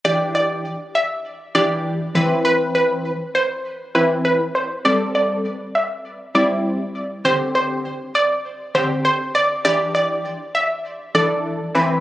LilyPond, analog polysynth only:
\new Staff \with { instrumentName = "Analog polysynth" } { \time 4/4 \key e \minor \tempo 4 = 100 <e d' g'>4 r4. <e d' g'>8. r16 <e c' b'>8~ | <e c' b'>4 r4. <e c' e'>8. r8. | <g c' a'>4 r4. <g c' e'>8. r8. | <d c' g'>4 r4. <d c' g'>8. r8. |
<e d' g'>4 r4. <e d' a'>8. r16 <e c' b'>8 | }